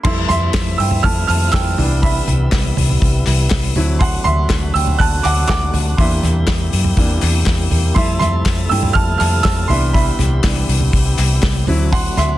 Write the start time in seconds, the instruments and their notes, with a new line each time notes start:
0.03 fingered electric bass F2, tonewheel organ C3 E3 F3 A3 E4, upright piano G3 A3 E4 E5 C6, kick, crash
0.29 fingered electric bass F2, upright piano E5 C6, snare, floor tom, hi-hat pedal, open hi-hat
0.54 fingered electric bass F2, kick, snare, clap, hi-hat pedal, open hi-hat
0.78 fingered electric bass G2, upright piano G5 E6, hi-hat pedal, open hi-hat
0.91 floor tom
1.03 fingered electric bass F2, upright piano G3 A3 E4 A5 F6, kick, hi-hat pedal, open hi-hat
1.27 fingered electric bass F2, upright piano A5 F6, clap, hi-hat pedal, open hi-hat
1.52 fingered electric bass F2, upright piano G5 E6, kick, snare, clap
1.78 fingered electric bass C2, upright piano E3 B3 D4, tonewheel organ E3 G3 B3 E4, floor tom, hi-hat pedal, open hi-hat
2.02 upright piano E5 B5, kick, hi-hat pedal, open hi-hat
2.27 fingered electric bass C2, floor tom, hi-hat pedal, open hi-hat
2.52 fingered electric bass C2, kick, snare, clap, hi-hat pedal, open hi-hat
2.77 fingered electric bass C2, floor tom, hi-hat pedal, open hi-hat
2.89 floor tom
3.02 fingered electric bass C2, kick, hi-hat pedal, open hi-hat
3.26 fingered electric bass C2, clap, hi-hat pedal, open hi-hat
3.50 kick, snare, clap, hi-hat pedal, open hi-hat
3.76 fingered electric bass D2, upright piano F#3 C4 E4, tonewheel organ F#3 A3 D4 F#4, floor tom, hi-hat pedal, open hi-hat
3.99 upright piano F#5 C6, kick, hi-hat pedal, open hi-hat
4.24 fingered electric bass D2, upright piano E5 C6, floor tom, hi-hat pedal, open hi-hat
4.50 fingered electric bass D2, kick, snare, clap, hi-hat pedal, open hi-hat
4.74 fingered electric bass D2, upright piano G5 E6, hi-hat pedal, open hi-hat
4.87 floor tom
4.99 fingered electric bass D2, upright piano A5 F#6, kick, hi-hat pedal, open hi-hat
5.23 fingered electric bass D2, upright piano F#5 D6, clap, hi-hat pedal, open hi-hat
5.48 fingered electric bass D2, upright piano F#5 D6, kick, snare, clap, hi-hat pedal, open hi-hat
5.74 fingered electric bass D2, floor tom, hi-hat pedal, open hi-hat
5.97 fingered electric bass E2, upright piano E3 A#3 D4 E5 C6, tonewheel organ G3 A#3 E4 G4, kick, hi-hat pedal, open hi-hat
6.23 fingered electric bass E2, snare, floor tom, hi-hat pedal, open hi-hat
6.47 fingered electric bass E2, kick, snare, clap, hi-hat pedal, open hi-hat
6.72 fingered electric bass F#2, hi-hat pedal, open hi-hat
6.84 floor tom
6.97 fingered electric bass E2, upright piano E3 A#3 D4, kick, hi-hat pedal, open hi-hat
7.21 fingered electric bass E2, clap, hi-hat pedal, open hi-hat
7.46 kick, snare, clap, hi-hat pedal, open hi-hat
7.71 fingered electric bass E2, floor tom, hi-hat pedal, open hi-hat
7.95 fingered electric bass F2, tonewheel organ F3 A3 A4, upright piano G3 A3 E4 E5 C6, kick, hi-hat pedal, open hi-hat
8.19 fingered electric bass F2, upright piano E5 C6, snare, floor tom, hi-hat pedal, open hi-hat
8.46 fingered electric bass F2, kick, snare, clap, hi-hat pedal, open hi-hat
8.69 fingered electric bass G2, upright piano G3 A3 E4 G5 E6, hi-hat pedal, open hi-hat
8.83 floor tom
8.93 fingered electric bass F2, upright piano A5 F6, kick, hi-hat pedal, open hi-hat
9.18 fingered electric bass F2, upright piano A5 F6, clap, hi-hat pedal, open hi-hat
9.43 fingered electric bass F2, upright piano A5 E6, kick, snare, clap, hi-hat pedal, open hi-hat
9.68 fingered electric bass C2, upright piano E3 B3 D4 E5 C6, tonewheel organ G3 B3 E4 G4, floor tom, hi-hat pedal, open hi-hat
9.93 upright piano E5 B5, kick, hi-hat pedal, open hi-hat
10.19 fingered electric bass C2, snare, floor tom, hi-hat pedal, open hi-hat
10.44 fingered electric bass C2, upright piano E3 B3 D4, kick, snare, clap, hi-hat pedal, open hi-hat
10.69 fingered electric bass C2, hi-hat pedal, open hi-hat
10.80 floor tom
10.93 kick, hi-hat pedal, open hi-hat
11.18 fingered electric bass C2, clap, hi-hat pedal, open hi-hat
11.42 fingered electric bass C2, kick, snare, clap, hi-hat pedal, open hi-hat
11.67 fingered electric bass D2, tonewheel organ F#3 A3 D4 F#4, upright piano F#3 C4 E4, floor tom, hi-hat pedal, open hi-hat
11.92 upright piano F#5 C6, kick, hi-hat pedal, open hi-hat
12.17 fingered electric bass D2, upright piano E5 C6, snare, floor tom, hi-hat pedal, open hi-hat